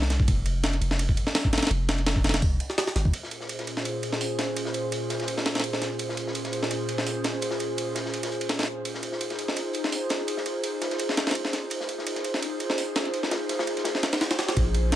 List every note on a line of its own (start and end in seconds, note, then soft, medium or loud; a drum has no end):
0.00 0.27 C2 medium
0.00 snare medium
0.10 snare soft
0.10 ride medium
0.20 kick medium
0.28 0.80 F1 loud
0.28 kick loud
0.28 ride medium
0.46 ride medium
0.64 snare loud
0.64 ride medium
0.73 ride soft
0.81 1.16 F1 medium
0.81 ride medium
0.91 snare medium
0.99 ride medium
1.09 kick medium
1.17 ride medium
1.27 snare medium
1.35 snare loud
1.35 open hi-hat medium
1.45 kick medium
1.53 snare medium
1.53 ride medium
1.58 snare medium
1.58 ride medium
1.63 snare medium
1.63 ride medium
1.67 2.23 F1 loud
1.67 snare medium
1.67 ride medium
1.71 ride medium
1.89 snare loud
1.89 ride medium
1.98 ride soft
2.06 snare loud
2.06 ride medium
2.16 kick medium
2.24 2.59 F1 medium
2.24 snare medium
2.24 ride medium
2.29 snare medium
2.29 ride medium
2.34 snare loud
2.34 ride medium
2.42 kick loud
2.42 ride medium
2.60 ride medium
2.70 snare soft
2.78 snare loud
2.78 ride medium
2.87 snare medium
2.96 3.12 G#1 loud
2.96 snare soft
2.96 ride medium
3.05 kick medium
3.13 5.97 A#2 medium
3.13 5.97 C#4 medium
3.13 5.97 F4 medium
3.13 5.97 G#4 medium
3.13 5.97 C5 medium
3.13 closed hi-hat medium
3.13 ride medium
3.23 snare soft
3.31 closed hi-hat medium
3.31 ride medium
3.40 snare soft
3.49 closed hi-hat medium
3.49 ride medium
3.59 snare soft
3.59 ride soft
3.67 closed hi-hat medium
3.67 ride medium
3.77 snare medium
3.85 closed hi-hat medium
3.85 ride medium
4.03 closed hi-hat medium
4.03 ride medium
4.12 snare medium
4.21 closed hi-hat medium
4.21 open hi-hat medium
4.39 snare medium
4.39 closed hi-hat medium
4.39 ride medium
4.57 closed hi-hat medium
4.57 ride medium
4.65 snare medium
4.74 closed hi-hat medium
4.74 ride medium
4.92 closed hi-hat medium
4.92 ride medium
5.10 snare soft
5.10 closed hi-hat medium
5.10 ride medium
5.20 snare soft
5.20 ride soft
5.28 closed hi-hat medium
5.28 ride medium
5.37 snare soft
5.46 snare medium
5.46 closed hi-hat medium
5.46 ride medium
5.55 snare medium
5.55 closed hi-hat soft
5.55 ride medium
5.60 snare medium
5.60 ride medium
5.64 closed hi-hat medium
5.64 ride medium
5.73 snare medium
5.82 snare soft
5.82 closed hi-hat medium
5.82 ride medium
5.99 8.83 A#2 medium
5.99 8.83 C#4 medium
5.99 8.83 F4 medium
5.99 8.83 G#4 medium
5.99 8.83 C5 loud
5.99 closed hi-hat medium
5.99 ride medium
6.09 snare soft
6.17 closed hi-hat medium
6.17 ride medium
6.27 snare soft
6.35 closed hi-hat medium
6.35 ride medium
6.45 snare soft
6.45 ride soft
6.53 closed hi-hat medium
6.53 ride medium
6.63 snare medium
6.71 closed hi-hat medium
6.71 ride medium
6.89 closed hi-hat medium
6.89 ride medium
6.98 snare medium
7.06 closed hi-hat medium
7.06 open hi-hat medium
7.24 snare medium
7.24 closed hi-hat medium
7.24 ride medium
7.42 closed hi-hat medium
7.42 ride medium
7.51 snare medium
7.59 closed hi-hat medium
7.59 ride medium
7.78 closed hi-hat medium
7.78 ride medium
7.95 snare soft
7.95 closed hi-hat medium
7.95 ride medium
8.06 snare soft
8.14 closed hi-hat medium
8.14 ride medium
8.23 snare soft
8.23 ride medium
8.32 closed hi-hat medium
8.41 closed hi-hat soft
8.41 ride medium
8.49 snare loud
8.49 closed hi-hat medium
8.49 ride medium
8.59 snare medium
8.59 ride medium
8.63 snare medium
8.63 ride medium
8.68 closed hi-hat medium
8.85 11.68 D#4 medium
8.85 11.68 F4 medium
8.85 11.69 G#4 medium
8.85 11.69 C5 medium
8.85 closed hi-hat medium
8.85 ride medium
8.94 snare soft
9.03 closed hi-hat medium
9.03 ride medium
9.12 snare soft
9.21 closed hi-hat medium
9.21 ride medium
9.30 snare soft
9.30 ride soft
9.39 closed hi-hat medium
9.39 ride medium
9.48 snare medium
9.56 closed hi-hat medium
9.56 ride medium
9.73 closed hi-hat medium
9.73 ride medium
9.84 snare medium
9.92 closed hi-hat medium
9.92 open hi-hat medium
10.09 snare medium
10.09 closed hi-hat medium
10.09 ride medium
10.28 closed hi-hat medium
10.28 ride medium
10.37 snare medium
10.46 closed hi-hat medium
10.46 ride medium
10.64 closed hi-hat medium
10.64 ride medium
10.81 snare soft
10.81 closed hi-hat medium
10.81 ride medium
10.90 snare soft
10.90 ride soft
10.99 closed hi-hat medium
10.99 ride medium
11.09 snare medium
11.09 snare soft
11.17 snare medium
11.17 closed hi-hat medium
11.17 ride medium
11.27 snare medium
11.27 closed hi-hat soft
11.27 ride medium
11.31 snare medium
11.31 ride medium
11.35 closed hi-hat medium
11.35 ride medium
11.45 snare medium
11.53 snare soft
11.53 closed hi-hat medium
11.53 ride medium
11.70 14.54 D#4 medium
11.70 14.54 F4 medium
11.70 14.54 G#4 medium
11.70 14.54 C5 loud
11.70 closed hi-hat medium
11.70 ride medium
11.80 snare medium
11.89 closed hi-hat medium
11.89 ride medium
11.98 snare soft
12.07 closed hi-hat medium
12.07 ride medium
12.16 snare soft
12.16 ride soft
12.24 closed hi-hat medium
12.24 ride medium
12.34 snare medium
12.42 closed hi-hat medium
12.42 ride medium
12.60 closed hi-hat medium
12.60 ride medium
12.70 snare medium
12.78 closed hi-hat medium
12.78 open hi-hat medium
12.95 snare loud
12.95 closed hi-hat medium
12.95 ride medium
13.05 ride soft
13.14 closed hi-hat medium
13.14 ride medium
13.23 snare medium
13.31 snare loud
13.31 closed hi-hat medium
13.31 ride medium
13.49 snare soft
13.49 closed hi-hat medium
13.49 ride medium
13.59 snare loud
13.59 closed hi-hat medium
13.67 ride medium
13.76 snare soft
13.76 closed hi-hat medium
13.76 ride soft
13.85 snare loud
13.85 closed hi-hat medium
13.85 ride medium
13.95 snare medium
14.03 snare loud
14.03 snare soft
14.03 closed hi-hat medium
14.03 ride medium
14.12 snare loud
14.12 closed hi-hat soft
14.12 ride medium
14.21 snare loud
14.21 closed hi-hat medium
14.21 ride medium
14.31 snare loud
14.31 ride medium
14.39 snare loud
14.39 closed hi-hat medium
14.39 ride medium
14.48 snare loud
14.48 ride medium
14.56 14.96 A#1 medium
14.56 14.96 C#4 loud
14.56 14.96 F4 medium
14.56 14.96 G#4 medium
14.56 14.96 C5 loud
14.56 kick loud
14.56 ride medium
14.74 ride medium
14.92 snare loud
14.92 ride medium